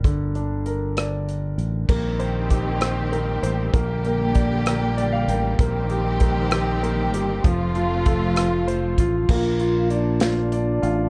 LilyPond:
<<
  \new Staff \with { instrumentName = "Grand piano" } { \time 6/8 \key bes \major \tempo 4. = 65 << { r2. | r2. | r2 r16 f''16 g''8 | r2. |
r2. | r2. | } \\ { <d d''>8 d'8 bes'8 d''4. | bes8 c''8 g'8 c''8 bes8 c''8 | bes8 bes'8 d''8 bes'8 d''8 bes'8 | bes8 g'8 bes8 g'8 bes8 g'8 |
f8 f'8 a'8 f'8 c''8 f'8 | bes8 f'8 d''8 f'8 d''8 f'8 | } >> }
  \new Staff \with { instrumentName = "French horn section" } { \time 6/8 \key bes \major r2. | r2. | r2. | r2. |
r2. | f'4 d'2 | }
  \new Staff \with { instrumentName = "String section" } { \time 6/8 \key bes \major << { r2. | <ees c' g'>2. | <d bes g'>2. | <ees c' g'>2. |
<c a f'>2. | r2. | } \\ { r2. | g2.~ | g2.~ | g2. |
f2. | r2. | } >> }
  \new Staff \with { instrumentName = "Fingered electric bass" } { \clef bass \time 6/8 \key bes \major g,,2~ g,,8 a,,8 | bes,,2~ bes,,8 a,,8 | bes,,2~ bes,,8 a,,8 | bes,,2~ bes,,8 g,,8 |
f,,2~ f,,8 a,,8 | bes,,2~ bes,,8 a,,8 | }
  \new DrumStaff \with { instrumentName = "Drums" } \drummode { \time 6/8 <hh bd>8 hh8 hh8 <hh ss>8 hh8 hh8 | <cymc bd>8 hh8 <hh bd>8 <hh ss>8 hh8 hh8 | <hh bd>8 hh8 <hh bd>8 <hh ss>8 hh8 hh8 | <hh bd>8 hh8 <hh bd>8 <hh ss>8 hh8 hh8 |
<hh bd>8 hh8 <hh bd>8 <hh ss>8 hh8 <hh bd>8 | <cymc bd>8 hh8 hh8 <hh sn>8 hh8 hh8 | }
>>